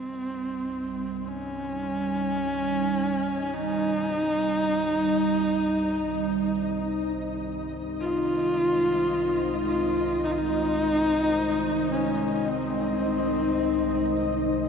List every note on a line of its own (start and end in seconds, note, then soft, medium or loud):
0.00 14.69 C2 medium
0.00 14.69 D#3 medium
0.00 8.01 G3 medium
0.00 1.29 C4 medium
0.00 14.69 D#4 medium
0.00 14.69 D#5 medium
0.21 14.69 D#4 medium
1.26 3.55 C#4 medium
1.26 14.69 D#5 medium
1.89 14.69 C5 medium
3.53 6.89 D#4 loud
7.99 14.69 G#3 medium
7.99 9.63 F4 loud
9.68 10.26 F4 loud
10.24 10.32 D#4 medium
10.31 10.39 F4 medium
10.38 11.90 D#4 loud
11.92 12.50 C#4 medium
12.48 14.69 C4 medium